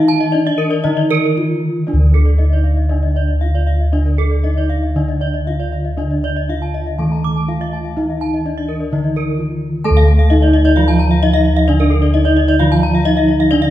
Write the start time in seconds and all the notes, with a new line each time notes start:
Already playing: D#3 D#4
0.08 A5
0.21 D#5
0.32 D4 D#4 D5
0.47 D#5
0.58 A#4
0.70 D5
0.84 D3 D#3 D#4 D#5
0.97 D5
1.11 A#4
1.37 D#4 F4
1.87 D3 D4 D5
1.93 D2
1.99 A#4
2.14 A4
2.25 D5
2.38 D#4 D#5
2.53 D5
2.64 F5
2.77 D#5
2.89 D3 D4 D5
3.03 D#5
3.16 D5
3.28 D#5
3.41 D#4 F4 F5
3.55 D5
3.67 F5
3.80 D#5
3.93 D3 D4 D5
4.06 A#4
4.18 A4
4.31 D5
4.44 D#4 D#5
4.57 D5
4.70 F5
4.83 D#5
4.96 D3 D4 D5
5.08 D#5
5.21 D5
5.34 D#5
5.47 D#4 F4 F5
5.60 D5
5.72 F5
5.85 D#5
5.97 D3 D4 D5
6.11 D#5
6.24 D5
6.36 D#5
6.49 D#4 F4 F5
6.62 A5
6.74 D#5
6.87 F5
6.98 D#3 A3 A4 A5
7.12 A#5
7.24 D6
7.36 A5
7.48 D#4 F4 F5
7.61 D#5
7.73 A5
7.85 F5
7.96 D#3 D#4 D#5
8.10 F5
8.21 A5
8.34 D#5
8.45 D4 D#4 D5
8.58 D#5
8.69 A#4
8.80 D5
8.91 D3 D#3 D#4 D#5
9.04 D5
9.16 A#4
9.38 D#4 F4
9.84 A3 A4 A5
9.91 D2
9.97 F5
10.07 A5
10.19 F5
10.30 D#4 D#5
10.42 D5
10.53 D#5
10.65 D5
10.76 F3 F4 F5
10.88 A5
10.99 A#5
11.11 F5
11.22 D#4 D#5
11.34 F5
11.45 D#5
11.57 F5
11.68 D3 D4 D5
11.80 A#4
11.90 A4
12.02 D5
12.14 D#4 D#5
12.25 D5
12.37 D#5
12.48 D5
12.59 D3 F3 F4 F5
12.72 A5
12.83 A#5
12.95 F5
13.05 D#4 D#5
13.17 F5
13.28 D#5
13.40 F5
13.51 D3 D4 D5
13.62 F5